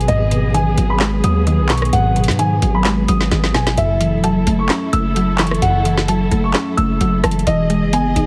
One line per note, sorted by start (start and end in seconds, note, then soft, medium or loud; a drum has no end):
0.00 0.30 B2 medium
0.00 0.53 D#3 medium
0.00 0.54 F#3 medium
0.00 7.43 F#3 medium
0.00 0.31 G#3 medium
0.00 3.74 B3 medium
0.00 3.74 G#4 medium
0.00 closed hi-hat soft
0.08 0.45 G#1 loud
0.08 1.24 G#2 loud
0.08 0.52 D#5 loud
0.08 closed hi-hat medium
0.31 1.47 B2 medium
0.31 closed hi-hat medium
0.44 0.76 A1 loud
0.54 1.46 D#3 medium
0.54 0.88 G#5 medium
0.54 closed hi-hat medium
0.78 1.22 G#1 loud
0.78 1.23 F#3 medium
0.78 closed hi-hat medium
0.90 1.22 B5 medium
1.00 2.16 G#3 loud
1.00 snare loud
1.00 clap medium
1.00 closed hi-hat medium
1.24 1.61 D#2 loud
1.24 2.39 F#3 medium
1.24 1.67 D#6 medium
1.24 closed hi-hat medium
1.47 2.38 D#3 medium
1.47 closed hi-hat medium
1.59 1.91 B1 loud
1.69 2.15 B2 medium
1.69 1.90 C#6 medium
1.69 snare loud
1.69 clap medium
1.69 closed hi-hat medium
1.78 closed hi-hat medium
1.82 cross-stick medium
1.82 closed hi-hat soft
1.93 2.30 G#1 loud
1.93 3.08 G#2 loud
1.93 2.36 F#5 loud
1.93 closed hi-hat medium
2.16 3.31 B2 medium
2.16 closed hi-hat medium
2.24 closed hi-hat medium
2.28 2.60 G#2 loud
2.28 snare medium
2.28 closed hi-hat medium
2.39 3.30 D#3 loud
2.39 2.72 G#5 medium
2.39 closed hi-hat medium
2.62 3.07 G#1 loud
2.62 3.07 F#3 medium
2.62 closed hi-hat medium
2.75 3.06 B5 medium
2.85 3.78 G#3 loud
2.85 snare loud
2.85 clap medium
2.85 closed hi-hat medium
3.08 3.30 G#1 loud
3.08 3.78 F#3 medium
3.08 3.52 D#6 medium
3.08 closed hi-hat medium
3.21 snare medium
3.31 3.76 G#1 loud
3.31 3.78 D#3 medium
3.31 snare medium
3.31 closed hi-hat medium
3.44 snare medium
3.54 3.77 B2 medium
3.54 3.74 G#5 medium
3.54 snare loud
3.54 closed hi-hat soft
3.67 snare loud
3.67 closed hi-hat medium
3.78 4.14 F#1 loud
3.78 4.93 F#2 loud
3.78 7.43 E4 medium
3.78 7.43 A4 medium
3.78 4.21 E5 loud
3.78 closed hi-hat medium
4.01 5.16 E3 medium
4.01 closed hi-hat medium
4.13 4.31 E1 loud
4.24 5.15 F#3 medium
4.24 4.57 A5 medium
4.24 closed hi-hat medium
4.30 4.46 F#1 loud
4.47 4.69 F#1 loud
4.47 4.92 A3 medium
4.47 closed hi-hat medium
4.59 4.91 C#6 medium
4.69 5.85 C#4 loud
4.69 snare loud
4.69 clap medium
4.69 closed hi-hat medium
4.93 5.59 F#1 loud
4.93 6.08 A3 medium
4.93 5.36 E6 medium
4.93 closed hi-hat medium
5.16 6.07 F#3 medium
5.16 closed hi-hat medium
5.38 5.84 E3 medium
5.38 5.59 C#6 medium
5.38 snare loud
5.38 clap medium
5.38 closed hi-hat medium
5.47 closed hi-hat medium
5.51 cross-stick medium
5.51 closed hi-hat soft
5.62 6.29 F#1 loud
5.62 6.78 F#2 medium
5.62 6.06 F#5 loud
5.62 closed hi-hat medium
5.85 7.01 E3 medium
5.85 closed hi-hat medium
5.98 snare medium
6.08 7.00 F#3 medium
6.08 6.42 A5 medium
6.08 closed hi-hat medium
6.31 6.54 F#1 loud
6.31 6.77 A3 medium
6.31 closed hi-hat medium
6.44 6.76 C#6 medium
6.54 7.47 C#4 loud
6.54 snare loud
6.54 clap medium
6.54 closed hi-hat medium
6.77 7.00 F#1 loud
6.77 7.47 A3 medium
6.77 7.21 E6 medium
6.77 closed hi-hat medium
7.01 7.23 F#1 loud
7.01 7.47 F#3 medium
7.01 closed hi-hat medium
7.24 7.46 F#1 loud
7.24 7.45 E3 medium
7.24 7.44 A5 medium
7.24 cross-stick loud
7.24 closed hi-hat medium
7.31 closed hi-hat medium
7.39 closed hi-hat soft
7.47 7.84 E1 loud
7.47 8.27 E3 medium
7.47 8.27 G#4 medium
7.47 8.27 D#5 medium
7.47 7.90 D#5 loud
7.47 closed hi-hat medium
7.70 8.27 G#3 medium
7.70 closed hi-hat medium
7.82 8.14 F#1 medium
7.93 8.27 B3 medium
7.93 8.26 G#5 medium
7.93 closed hi-hat medium
8.16 8.27 E1 loud
8.16 8.27 D#4 medium
8.16 closed hi-hat medium